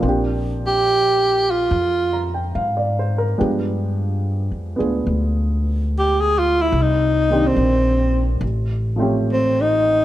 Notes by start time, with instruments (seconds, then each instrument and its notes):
Already playing: grand piano F3 D5
0.00 upright bass A#1, grand piano A#3 C4
0.04 grand piano D4
0.09 grand piano G4
0.66 tenor saxophone G4
1.50 tenor saxophone F4
1.71 upright bass F2
2.13 grand piano A#5
2.34 grand piano G5
2.55 upright bass G#2, grand piano F5
2.77 grand piano D5
2.99 grand piano C5
3.18 grand piano A#4
3.38 upright bass G2, grand piano F3 G#3 B3 D4 G4
4.51 upright bass F2
4.76 grand piano B3 D4 F4 G#4
4.80 upright bass D2
5.07 upright bass D2
5.98 tenor saxophone G4
6.21 tenor saxophone G#4
6.39 tenor saxophone F4
6.61 tenor saxophone E4
6.72 upright bass C2
6.82 tenor saxophone D#4
7.30 grand piano D#3 A#3 C4 D4 G4
7.47 tenor saxophone C4
7.56 upright bass A#1
8.41 upright bass A1
8.96 grand piano F3 A3 C4
9.00 grand piano C#4 G4
9.32 tenor saxophone C4
9.61 tenor saxophone D#4